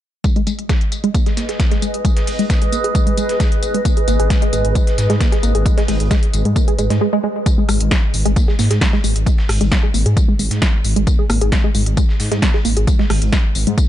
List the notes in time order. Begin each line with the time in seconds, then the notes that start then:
0.24 G#3 G#4, kick, closed hi-hat, tambourine
0.36 G#3 D#5, closed hi-hat
0.47 G#3, closed hi-hat, tambourine
0.59 closed hi-hat
0.69 G#3, kick, snare, closed hi-hat, tambourine
0.81 closed hi-hat
0.86 B4
0.92 closed hi-hat, tambourine
1.04 G#3, closed hi-hat
1.14 A#3, kick, closed hi-hat, tambourine
1.26 G#4, snare, closed hi-hat
1.37 A#3, snare, closed hi-hat, tambourine
1.49 G#4, snare, closed hi-hat
1.60 G#3, kick, snare, closed hi-hat, tambourine
1.71 G#3, snare, closed hi-hat
1.82 G#3, closed hi-hat, tambourine
1.94 closed hi-hat
2.05 G#3, kick, closed hi-hat, tambourine
2.17 snare, closed hi-hat
2.27 closed hi-hat, open hi-hat
2.39 G#3, closed hi-hat
2.50 A#3, kick, snare, closed hi-hat, tambourine
2.62 G#4, closed hi-hat
2.72 A#3, closed hi-hat, tambourine
2.84 G#4, closed hi-hat
2.95 G#3, kick, closed hi-hat, tambourine
3.07 G#3, closed hi-hat
3.17 G#3, closed hi-hat, tambourine
3.29 snare, closed hi-hat
3.40 G#3, kick, snare, closed hi-hat, tambourine
3.52 closed hi-hat
3.63 closed hi-hat, tambourine
3.74 G#3, closed hi-hat
3.85 A#3, kick, closed hi-hat, tambourine
3.97 G#4, closed hi-hat
4.08 G#1 A#3, closed hi-hat, tambourine
4.19 G#1 G#4, closed hi-hat
4.30 G#3, kick, snare, closed hi-hat, tambourine
4.42 G#3, closed hi-hat
4.53 G#1 G#3, closed hi-hat, tambourine
4.65 G#1, closed hi-hat
4.75 G#3, kick, closed hi-hat, tambourine
4.87 snare, closed hi-hat
4.98 G#2, snare, closed hi-hat, tambourine
5.10 G#2 G#3, snare, closed hi-hat
5.20 A#3, kick, snare, closed hi-hat, tambourine
5.32 G#4, snare, closed hi-hat
5.43 G#1 A#3, closed hi-hat, tambourine
5.55 G#1 G#4, closed hi-hat
5.66 G#3, kick, closed hi-hat, tambourine
5.78 G#3, snare, closed hi-hat
5.88 G#1 G#3, closed hi-hat, open hi-hat
6.00 G#1, closed hi-hat
6.11 G#3, kick, snare, closed hi-hat, tambourine
6.23 closed hi-hat
6.33 G#1, closed hi-hat, tambourine
6.45 G#2 G#3, closed hi-hat
6.56 A#3, kick, closed hi-hat, tambourine
6.68 G#4, closed hi-hat
6.78 G#1 G#3, closed hi-hat, tambourine
6.90 G#2 G#3, snare, closed hi-hat
7.01 G#3
7.13 G#3
7.24 G#3
7.46 G#3, kick, closed hi-hat, tambourine
7.58 G#3
7.69 G#1 G#3, cross-stick, open hi-hat, tambourine
7.80 G#1, closed hi-hat
7.91 G#3, kick, snare, closed hi-hat, tambourine
8.14 G#1, open hi-hat, tambourine
8.26 G#1 G#3, closed hi-hat
8.36 A#3, kick, closed hi-hat, tambourine
8.48 G#4, snare
8.59 G#2 A#3, snare, open hi-hat, tambourine
8.71 G#2 G#4, snare, closed hi-hat
8.81 G#3, kick, snare, closed hi-hat, tambourine
8.93 G#3, snare
9.04 G#1 G#3, open hi-hat, tambourine
9.16 G#1, closed hi-hat
9.26 G#3, kick, closed hi-hat, tambourine
9.38 snare
9.49 G#1, cross-stick, open hi-hat
9.61 G#1 G#3, closed hi-hat
9.72 A#3, kick, snare, closed hi-hat, tambourine
9.83 G#4
9.94 G#1 A#3, open hi-hat, tambourine
10.06 G#2 G#4, closed hi-hat
10.17 G#3, kick, closed hi-hat, tambourine
10.28 G#3
10.39 G#1 G#3, open hi-hat, tambourine
10.51 G#2, snare, closed hi-hat
10.62 G#3, kick, snare, closed hi-hat, tambourine
10.84 G#1, open hi-hat, tambourine
10.96 G#1 G#3, closed hi-hat
11.07 A#3, kick, closed hi-hat, tambourine
11.19 G#4
11.30 G#1 A#3, cross-stick, open hi-hat, tambourine
11.41 G#1 G#4, closed hi-hat
11.52 G#3, kick, snare, closed hi-hat, tambourine
11.64 G#3
11.75 G#1 G#3, open hi-hat, tambourine
11.86 G#1, closed hi-hat
11.97 G#3, kick, closed hi-hat, tambourine
12.09 snare
12.20 G#2, snare, open hi-hat, tambourine
12.32 G#2 G#3, snare, closed hi-hat
12.42 A#3, kick, snare, closed hi-hat, tambourine
12.54 G#4, snare
12.65 G#1 A#3, open hi-hat, tambourine
12.77 G#1 G#4, closed hi-hat
12.87 G#3, kick, closed hi-hat, tambourine
12.99 G#3, snare
13.10 G#1 G#3, cross-stick, open hi-hat
13.22 G#1, closed hi-hat
13.33 G#3, kick, snare, closed hi-hat, tambourine
13.55 G#1, open hi-hat, tambourine
13.67 G#2 G#3, closed hi-hat
13.78 A#3, kick, closed hi-hat, tambourine